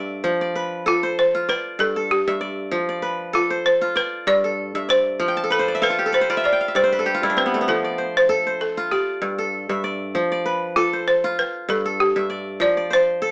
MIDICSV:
0, 0, Header, 1, 3, 480
1, 0, Start_track
1, 0, Tempo, 617920
1, 188, Time_signature, 4, 2, 24, 8
1, 10342, End_track
2, 0, Start_track
2, 0, Title_t, "Balafon"
2, 0, Program_c, 0, 12
2, 682, Note_on_c, 0, 65, 80
2, 788, Note_off_c, 0, 65, 0
2, 923, Note_on_c, 0, 72, 90
2, 1161, Note_on_c, 0, 71, 84
2, 1164, Note_off_c, 0, 72, 0
2, 1266, Note_off_c, 0, 71, 0
2, 1399, Note_on_c, 0, 69, 81
2, 1505, Note_off_c, 0, 69, 0
2, 1640, Note_on_c, 0, 67, 78
2, 1983, Note_off_c, 0, 67, 0
2, 2602, Note_on_c, 0, 65, 80
2, 2708, Note_off_c, 0, 65, 0
2, 2842, Note_on_c, 0, 72, 84
2, 3083, Note_on_c, 0, 71, 92
2, 3085, Note_off_c, 0, 72, 0
2, 3322, Note_on_c, 0, 74, 98
2, 3326, Note_off_c, 0, 71, 0
2, 3807, Note_on_c, 0, 72, 101
2, 3813, Note_off_c, 0, 74, 0
2, 4288, Note_on_c, 0, 69, 79
2, 4296, Note_off_c, 0, 72, 0
2, 4393, Note_off_c, 0, 69, 0
2, 4532, Note_on_c, 0, 71, 86
2, 4748, Note_off_c, 0, 71, 0
2, 4771, Note_on_c, 0, 72, 84
2, 5011, Note_off_c, 0, 72, 0
2, 5013, Note_on_c, 0, 74, 84
2, 5117, Note_off_c, 0, 74, 0
2, 5252, Note_on_c, 0, 72, 84
2, 5732, Note_on_c, 0, 71, 80
2, 5739, Note_off_c, 0, 72, 0
2, 5972, Note_off_c, 0, 71, 0
2, 5972, Note_on_c, 0, 69, 79
2, 6347, Note_on_c, 0, 72, 84
2, 6348, Note_off_c, 0, 69, 0
2, 6662, Note_off_c, 0, 72, 0
2, 6689, Note_on_c, 0, 69, 74
2, 6925, Note_on_c, 0, 67, 71
2, 6930, Note_off_c, 0, 69, 0
2, 7609, Note_off_c, 0, 67, 0
2, 8359, Note_on_c, 0, 65, 75
2, 8579, Note_off_c, 0, 65, 0
2, 8604, Note_on_c, 0, 72, 85
2, 8845, Note_off_c, 0, 72, 0
2, 8848, Note_on_c, 0, 71, 82
2, 9086, Note_off_c, 0, 71, 0
2, 9087, Note_on_c, 0, 69, 82
2, 9324, Note_on_c, 0, 67, 86
2, 9325, Note_off_c, 0, 69, 0
2, 9663, Note_off_c, 0, 67, 0
2, 9800, Note_on_c, 0, 74, 96
2, 10040, Note_off_c, 0, 74, 0
2, 10047, Note_on_c, 0, 72, 94
2, 10342, Note_off_c, 0, 72, 0
2, 10342, End_track
3, 0, Start_track
3, 0, Title_t, "Kora"
3, 0, Program_c, 1, 46
3, 0, Note_on_c, 1, 43, 69
3, 0, Note_on_c, 1, 69, 59
3, 0, Note_on_c, 1, 74, 62
3, 0, Note_on_c, 1, 76, 60
3, 184, Note_on_c, 1, 53, 79
3, 227, Note_off_c, 1, 43, 0
3, 231, Note_off_c, 1, 76, 0
3, 317, Note_off_c, 1, 74, 0
3, 320, Note_on_c, 1, 74, 58
3, 431, Note_on_c, 1, 71, 62
3, 623, Note_off_c, 1, 69, 0
3, 668, Note_on_c, 1, 69, 78
3, 801, Note_on_c, 1, 72, 57
3, 847, Note_off_c, 1, 71, 0
3, 1045, Note_on_c, 1, 65, 68
3, 1151, Note_off_c, 1, 74, 0
3, 1154, Note_on_c, 1, 74, 67
3, 1189, Note_off_c, 1, 53, 0
3, 1390, Note_on_c, 1, 43, 71
3, 1521, Note_off_c, 1, 69, 0
3, 1524, Note_on_c, 1, 69, 61
3, 1723, Note_off_c, 1, 72, 0
3, 1759, Note_off_c, 1, 43, 0
3, 1768, Note_on_c, 1, 43, 74
3, 1768, Note_on_c, 1, 76, 57
3, 1815, Note_off_c, 1, 65, 0
3, 1867, Note_off_c, 1, 74, 0
3, 1870, Note_on_c, 1, 74, 61
3, 2109, Note_on_c, 1, 53, 78
3, 2151, Note_off_c, 1, 43, 0
3, 2156, Note_off_c, 1, 76, 0
3, 2240, Note_off_c, 1, 74, 0
3, 2243, Note_on_c, 1, 74, 60
3, 2348, Note_on_c, 1, 71, 64
3, 2547, Note_off_c, 1, 69, 0
3, 2589, Note_on_c, 1, 69, 80
3, 2722, Note_on_c, 1, 72, 65
3, 2768, Note_off_c, 1, 71, 0
3, 2963, Note_on_c, 1, 65, 73
3, 3069, Note_off_c, 1, 74, 0
3, 3073, Note_on_c, 1, 74, 67
3, 3112, Note_off_c, 1, 53, 0
3, 3316, Note_on_c, 1, 43, 74
3, 3446, Note_off_c, 1, 69, 0
3, 3449, Note_on_c, 1, 69, 58
3, 3644, Note_off_c, 1, 72, 0
3, 3680, Note_off_c, 1, 43, 0
3, 3689, Note_on_c, 1, 43, 70
3, 3690, Note_on_c, 1, 76, 60
3, 3737, Note_off_c, 1, 65, 0
3, 3793, Note_off_c, 1, 74, 0
3, 3796, Note_on_c, 1, 74, 62
3, 4036, Note_on_c, 1, 53, 82
3, 4074, Note_off_c, 1, 43, 0
3, 4082, Note_off_c, 1, 76, 0
3, 4102, Note_on_c, 1, 79, 67
3, 4170, Note_on_c, 1, 81, 68
3, 4219, Note_off_c, 1, 69, 0
3, 4223, Note_on_c, 1, 69, 64
3, 4275, Note_on_c, 1, 71, 62
3, 4344, Note_on_c, 1, 72, 67
3, 4410, Note_off_c, 1, 74, 0
3, 4413, Note_on_c, 1, 74, 66
3, 4464, Note_on_c, 1, 76, 66
3, 4516, Note_off_c, 1, 69, 0
3, 4519, Note_on_c, 1, 69, 77
3, 4519, Note_on_c, 1, 77, 67
3, 4582, Note_on_c, 1, 65, 65
3, 4629, Note_off_c, 1, 76, 0
3, 4650, Note_on_c, 1, 67, 70
3, 4703, Note_off_c, 1, 69, 0
3, 4706, Note_on_c, 1, 69, 64
3, 4754, Note_off_c, 1, 71, 0
3, 4757, Note_on_c, 1, 71, 67
3, 4804, Note_off_c, 1, 72, 0
3, 4825, Note_off_c, 1, 79, 0
3, 4826, Note_on_c, 1, 72, 64
3, 4845, Note_off_c, 1, 81, 0
3, 4888, Note_off_c, 1, 65, 0
3, 4890, Note_off_c, 1, 74, 0
3, 4891, Note_on_c, 1, 65, 73
3, 4893, Note_on_c, 1, 74, 62
3, 4949, Note_on_c, 1, 76, 67
3, 4995, Note_off_c, 1, 77, 0
3, 5001, Note_on_c, 1, 77, 63
3, 5035, Note_off_c, 1, 53, 0
3, 5068, Note_on_c, 1, 79, 60
3, 5130, Note_off_c, 1, 77, 0
3, 5133, Note_on_c, 1, 77, 59
3, 5179, Note_off_c, 1, 76, 0
3, 5190, Note_on_c, 1, 76, 60
3, 5237, Note_off_c, 1, 65, 0
3, 5242, Note_off_c, 1, 74, 0
3, 5243, Note_on_c, 1, 43, 69
3, 5245, Note_on_c, 1, 74, 64
3, 5307, Note_off_c, 1, 72, 0
3, 5310, Note_on_c, 1, 72, 65
3, 5357, Note_off_c, 1, 71, 0
3, 5378, Note_on_c, 1, 71, 68
3, 5426, Note_off_c, 1, 69, 0
3, 5429, Note_on_c, 1, 69, 64
3, 5481, Note_off_c, 1, 67, 0
3, 5484, Note_on_c, 1, 67, 75
3, 5551, Note_on_c, 1, 65, 72
3, 5597, Note_off_c, 1, 76, 0
3, 5609, Note_off_c, 1, 43, 0
3, 5617, Note_on_c, 1, 64, 66
3, 5618, Note_on_c, 1, 43, 70
3, 5664, Note_off_c, 1, 77, 0
3, 5669, Note_on_c, 1, 62, 64
3, 5723, Note_on_c, 1, 60, 62
3, 5769, Note_off_c, 1, 71, 0
3, 5792, Note_off_c, 1, 79, 0
3, 5793, Note_on_c, 1, 59, 65
3, 5840, Note_off_c, 1, 72, 0
3, 5858, Note_on_c, 1, 57, 63
3, 5908, Note_off_c, 1, 59, 0
3, 5911, Note_on_c, 1, 59, 68
3, 5958, Note_off_c, 1, 60, 0
3, 5965, Note_on_c, 1, 53, 73
3, 5996, Note_off_c, 1, 43, 0
3, 6012, Note_off_c, 1, 64, 0
3, 6091, Note_off_c, 1, 74, 0
3, 6094, Note_on_c, 1, 74, 57
3, 6200, Note_on_c, 1, 72, 64
3, 6247, Note_off_c, 1, 59, 0
3, 6437, Note_off_c, 1, 69, 0
3, 6440, Note_on_c, 1, 69, 78
3, 6574, Note_off_c, 1, 72, 0
3, 6577, Note_on_c, 1, 72, 61
3, 6581, Note_off_c, 1, 67, 0
3, 6726, Note_off_c, 1, 65, 0
3, 6815, Note_on_c, 1, 65, 69
3, 6922, Note_off_c, 1, 74, 0
3, 6925, Note_on_c, 1, 74, 61
3, 6956, Note_off_c, 1, 53, 0
3, 6974, Note_off_c, 1, 62, 0
3, 7159, Note_on_c, 1, 43, 69
3, 7287, Note_off_c, 1, 69, 0
3, 7290, Note_on_c, 1, 69, 61
3, 7410, Note_off_c, 1, 57, 0
3, 7499, Note_off_c, 1, 72, 0
3, 7522, Note_off_c, 1, 43, 0
3, 7530, Note_on_c, 1, 43, 71
3, 7532, Note_on_c, 1, 76, 57
3, 7579, Note_off_c, 1, 65, 0
3, 7639, Note_off_c, 1, 74, 0
3, 7642, Note_on_c, 1, 74, 59
3, 7883, Note_on_c, 1, 53, 82
3, 7914, Note_off_c, 1, 43, 0
3, 7929, Note_off_c, 1, 76, 0
3, 8011, Note_off_c, 1, 74, 0
3, 8014, Note_on_c, 1, 74, 59
3, 8122, Note_on_c, 1, 71, 62
3, 8314, Note_off_c, 1, 69, 0
3, 8361, Note_on_c, 1, 69, 77
3, 8492, Note_on_c, 1, 72, 60
3, 8539, Note_off_c, 1, 71, 0
3, 8732, Note_on_c, 1, 65, 75
3, 8871, Note_off_c, 1, 53, 0
3, 8875, Note_off_c, 1, 74, 0
3, 9077, Note_on_c, 1, 43, 73
3, 9206, Note_off_c, 1, 69, 0
3, 9209, Note_on_c, 1, 69, 59
3, 9415, Note_off_c, 1, 72, 0
3, 9436, Note_off_c, 1, 43, 0
3, 9445, Note_on_c, 1, 43, 68
3, 9445, Note_on_c, 1, 76, 63
3, 9492, Note_off_c, 1, 65, 0
3, 9552, Note_on_c, 1, 74, 59
3, 9787, Note_on_c, 1, 53, 84
3, 9828, Note_off_c, 1, 43, 0
3, 9834, Note_off_c, 1, 76, 0
3, 9917, Note_off_c, 1, 74, 0
3, 9920, Note_on_c, 1, 74, 58
3, 10024, Note_on_c, 1, 72, 66
3, 10233, Note_off_c, 1, 69, 0
3, 10267, Note_on_c, 1, 69, 80
3, 10342, Note_off_c, 1, 53, 0
3, 10342, Note_off_c, 1, 69, 0
3, 10342, Note_off_c, 1, 72, 0
3, 10342, Note_off_c, 1, 74, 0
3, 10342, End_track
0, 0, End_of_file